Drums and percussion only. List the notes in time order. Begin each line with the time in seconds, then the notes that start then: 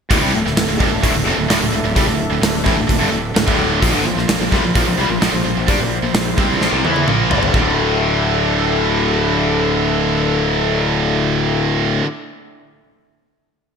0.11 kick, open hi-hat
0.46 snare
0.57 snare, open hi-hat
0.80 kick
1.03 kick, open hi-hat
1.50 snare, open hi-hat
1.96 kick, open hi-hat
2.43 snare, open hi-hat
2.66 kick, snare
2.89 kick, open hi-hat
3.36 snare, open hi-hat
3.48 kick
3.82 kick, open hi-hat
4.18 snare
4.29 snare, open hi-hat
4.52 kick, snare
4.75 kick, open hi-hat
5.22 snare, open hi-hat
5.68 kick, open hi-hat
6.15 snare, open hi-hat
6.38 kick
6.61 snare
6.85 high tom
6.96 high tom
7.08 mid tom
7.31 floor tom
7.43 floor tom
7.54 kick